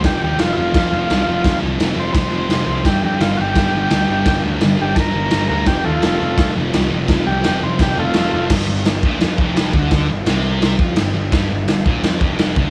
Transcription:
<<
  \new Staff \with { instrumentName = "Transistor combo organ" } { \time 4/4 \key g \minor \tempo 4 = 170 g'8 g'8 f'8 <e' f'>2~ <e' f'>8~ | <e' f'>8 r4 c''8 <b' c''>2 | g'8 g'8 f'8 <fis' g'>2~ <fis' g'>8~ | <fis' g'>8 r4 g'8 <a' bes'>4. bes'8 |
g'8 <a f'>2 r4. | r8 g'4 c''8 g'8 <a f'>4. | r1 | r1 |
r1 | }
  \new Staff \with { instrumentName = "Distorted electric guitar" } { \clef bass \time 4/4 \key g \minor <f, c f>8 <c f>8 <f, c f>8 <f, c f>8 <f, c f>8 <f, c f>8 <f, c f>8 <c f>8 | <f, c f>8 <c f>8 <f, c f>8 <f, c f>8 <f, c f>8 <f, c f>8 <f, c f>8 <c f>8 | <g, d g>8 <d g>8 <g, d g>8 <g, d g>8 <g, d g>8 <g, d g>8 <g, d g>8 <d g>8 | <g, d g>8 <d g>8 <g, d g>8 <g, d g>8 <g, d g>8 <g, d g>8 <g, d g>8 <d g>8 |
<f, c f>8 <c f>8 <f, c f>8 <f, c f>8 <f, c f>8 <f, c f>8 <f, c f>8 <c f>8 | <f, c f>8 <c f>8 <f, c f>8 <f, c f>8 <f, c f>8 <f, c f>8 <f, c f>8 <c f>8 | g,8 g,8 g,8 bes,8 f8 f,4 d8~ | d8 g,8 c4. f8 g,8 g,8 |
g,8 g,8 g,8 bes,8 f8 f,4 d8 | }
  \new Staff \with { instrumentName = "Picked electric bass" } { \clef bass \time 4/4 \key g \minor f,,8 ees,8 f,,8 f,,8 f,,8 f,,8 c,8 f,,8 | f,,8 c,8 f,,8 f,,8 f,,8 f,,8 f,,8 c,8 | g,,8 f,8 g,,8 g,,8 g,,8 g,,8 d,8 g,,8 | g,,8 d,8 g,,8 g,,8 g,,8 g,,8 g,,8 d,8 |
f,,8 ees,8 f,,8 f,,8 f,,8 f,,8 c,8 f,,8 | f,,8 c,8 f,,8 f,,8 f,,8 f,,8 f,,8 f,,8 | g,,8 g,,8 g,,8 bes,,8 f,8 f,,4 d,8~ | d,8 g,,8 c,4. f,8 g,,8 g,,8 |
g,,8 g,,8 g,,8 bes,,8 f,8 f,,4 d,8 | }
  \new DrumStaff \with { instrumentName = "Drums" } \drummode { \time 4/4 <cymc bd sn>4 <cymc sn>4 <cymc bd sn>4 <cymc sn>4 | <cymc bd sn>4 <cymc sn>4 <cymc bd sn>4 <cymc sn>4 | <cymc bd sn>4 <cymc sn>4 <cymc bd sn>4 <cymc sn>4 | <cymc bd sn>4 <cymc sn>4 <cymc bd sn>4 <cymc sn>4 |
<cymc bd sn>4 <cymc sn>4 <cymc bd sn>4 <cymc sn>4 | <cymc bd sn>4 <cymc sn>4 <cymc bd sn>4 <cymc sn>4 | <cymc bd sn>4 <cymc sn>8 bd8 <cymc sn>8 bd8 <cymc sn>8 bd8 | <cymc bd sn>4 <cymc sn>4 <cymc sn>8 bd8 <cymc sn>4 |
<cymc bd sn>4 <cymc sn>8 bd8 <cymc sn>8 bd8 <cymc sn>8 bd8 | }
>>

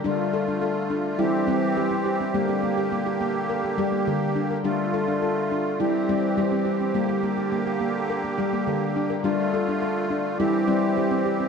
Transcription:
<<
  \new Staff \with { instrumentName = "Handpan" } { \time 4/4 \key g \dorian \tempo 4 = 104 d'8 a'16 d'16 a'8 d'8 e'8 c'8 g'16 c'16 g'16 c'16 | bes16 g'16 bes16 g'16 bes16 g'16 bes8 bes'16 bes16 g'16 bes16 g'8 d'16 bes'16 | d'8 a'16 d'16 a'8 d'8 e'8 c'8 g'16 c'16 g'16 c'16 | bes16 g'16 bes16 g'16 bes16 g'16 bes8 bes'16 bes16 g'16 bes16 g'8 d'16 bes'16 |
d'8 a'16 d'16 a'8 d'8 e'8 c'8 g'16 c'16 g'16 c'16 | }
  \new Staff \with { instrumentName = "Handpan" } { \clef bass \time 4/4 \key g \dorian g2 g8 g8 g4 | g2 r8 g8 d4 | g2 g8 g8 g4 | g2 r8 g8 d4 |
g2 g8 g8 g4 | }
  \new Staff \with { instrumentName = "Accordion" } { \time 4/4 \key g \dorian f'2 g'2~ | g'1 | f'2 g'2~ | g'1 |
f'2 g'2 | }
  \new Staff \with { instrumentName = "Accordion" } { \time 4/4 \key g \dorian << { a2 c'2 | bes1 | a2 c'2 | bes1 |
a2 c'2 | } \\ { d2 e2 | d1~ | d2 e2 | d1~ |
d2 e2 | } >> }
>>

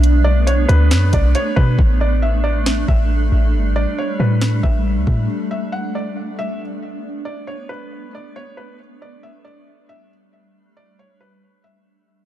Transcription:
<<
  \new Staff \with { instrumentName = "Felt piano" } { \time 4/4 \key a \mixolydian \tempo 4 = 137 r8 d''8 cis''8 b'4 d''8 cis''8 b'8 | r8 d''8 e''8 d''4 e''8 r4 | r8 d''8 cis''8 b'4 e''4. | r8 e''8 fis''8 d''4 e''8 r4 |
r8 d''8 cis''8 b'4 d''8 cis''8 b'8 | r8 d''8 e''8 d''4 e''8 r4 | r8 d''8 cis''8 b'4 e''4. | }
  \new Staff \with { instrumentName = "Ambient pad" } { \time 4/4 \key a \mixolydian << { d'1~ | d'1~ | d'1~ | d'1~ |
d'1 | d'1~ | d'1 | } \\ { <a b>1 | g1~ | g1 | b1~ |
b1 | <g a>1~ | <g a>1 | } >> }
  \new Staff \with { instrumentName = "808-style bass" } { \clef bass \time 4/4 \key a \mixolydian b,,4. d,8 fis,8 b,,8 r8 b,8 | a,,2~ a,,8 a,,4 a,,8 | g,,16. a,,16. r8. a,4 a,,8. cis,16 a,8 | r1 |
r1 | r1 | r1 | }
  \new DrumStaff \with { instrumentName = "Drums" } \drummode { \time 4/4 hh4 hh8 hh8 <hh sn>8 <hh bd>8 hh8 bd8 | bd4 r4 sn8 bd8 r4 | r4 r4 sn8 bd8 r8 bd8 | r4 r4 r4 r4 |
r4 r4 r4 r4 | r4 r4 r4 r4 | r4 r4 r4 r4 | }
>>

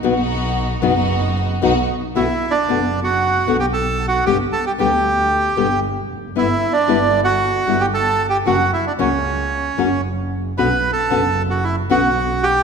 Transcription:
<<
  \new Staff \with { instrumentName = "Bandoneon" } { \time 4/4 \key b \major \tempo 4 = 114 r1 | \key b \minor \tuplet 3/2 { e'4 d'8~ d'4 fis'8~ } fis'8. g'16 \tuplet 3/2 { a'4 fis'8 } | g'8 a'16 g'16 g'2 r4 | \tuplet 3/2 { e'4 d'8~ d'4 fis'8~ } fis'8. g'16 \tuplet 3/2 { a'4 g'8 } |
fis'8 e'16 d'16 cis'2 r4 | \tuplet 3/2 { b'4 a'8~ } a'8. fis'16 e'8 fis'4 g'8 | }
  \new Staff \with { instrumentName = "String section" } { \time 4/4 \key b \major <b dis' fis'>4. <b dis' fis'>4. <b dis' fis'>8 r8 | \key b \minor r1 | r1 | r1 |
r1 | r1 | }
  \new Staff \with { instrumentName = "Nylon-string guitar" } { \time 4/4 \key b \major <b, fis b dis' fis'>8 r4 <b, fis b dis' fis'>8 r4 <b, fis b dis' fis'>8 r8 | \key b \minor <b, d a b fis'>8 r8 <b, d a b fis'>8 r4 <b, d a b fis'>8 r4 | <b, d g b g'>8 r8 <b, d g b g'>8 r4 <b, d g b g'>8 r4 | <g b e'>8 r8 <g b e'>8 r4 <g b e'>8 r4 |
<cis fis ais cis' fis'>8 r8 <cis fis ais cis' fis'>8 r4 <cis fis ais cis' fis'>8 r4 | <b, d b cis' fis'>8 r8 <b, d b cis' fis'>8 r4 <b, d b cis' fis'>8 r4 | }
  \new Staff \with { instrumentName = "Double bass" } { \clef bass \time 4/4 \key b \major b,,4. fis,,4. b,,8 r8 | \key b \minor b,,8 r8 fis,,4. b,,4. | g,,8 r8 d,4. g,,4 eis,,8 | g,,8 r8 g,,4. g,,4. |
fis,,8 r8 cis,4. fis,,4. | b,,8 r8 fis,,4. b,,4. | }
>>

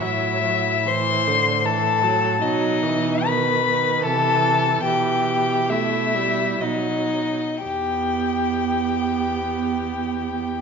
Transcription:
<<
  \new Staff \with { instrumentName = "Violin" } { \time 3/4 \key e \minor \tempo 4 = 70 e''4 c'''4 a''4 | dis''4 b''4 a''4 | g''4 e''4 dis''4 | g''2. | }
  \new Staff \with { instrumentName = "Violin" } { \time 3/4 \key e \minor e'4 c''4 a'4 | dis'4 b'4 a'4 | g'4 e'4 dis'4 | g'2. | }
  \new Staff \with { instrumentName = "Viola" } { \clef bass \time 3/4 \key e \minor fis8 fis8 e8 d8 e8 fis8 | fis8 e8 dis8 dis8 e4 | e4 a8 g8 fis8. r16 | b2. | }
  \new Staff \with { instrumentName = "Cello" } { \clef bass \time 3/4 \key e \minor a,2. | b,2 c4 | b,2 b,8. r16 | e,2. | }
>>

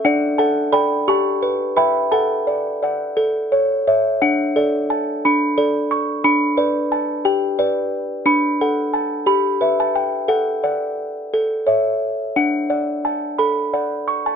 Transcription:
\new Staff \with { instrumentName = "Music box" } { \time 6/8 \key d \major \tempo 4. = 59 << { <d'' fis''>8 <fis'' a''>8 <g'' b''>8 <a'' cis'''>4 <g'' b''>8 | <fis'' a''>2~ <fis'' a''>8 r8 | fis''4 a''8 b''4 cis'''8 | b''4 a''8 g''4. |
b''4 a''8 b''8. a''16 g''8 | fis''4. r4. | fis''4 a''8 b''4 cis'''16 a''16 | } \\ { d'8 a'8 <a' d''>8 g'8 b'8 <b' e''>8 | a'8 d''8 <d'' fis''>8 a'8 cis''8 <cis'' e''>8 | d'8 <a' d''>4 d'8 <a' d''>4 | d'8 <b' d''>4 g'8 <b' d''>4 |
d'8 <a' fis''>4 g'8 <b' e''>4 | a'8 <d'' fis''>4 a'8 <cis'' e''>4 | d'8 <d'' fis''>4 a'8 <d'' fis''>4 | } >> }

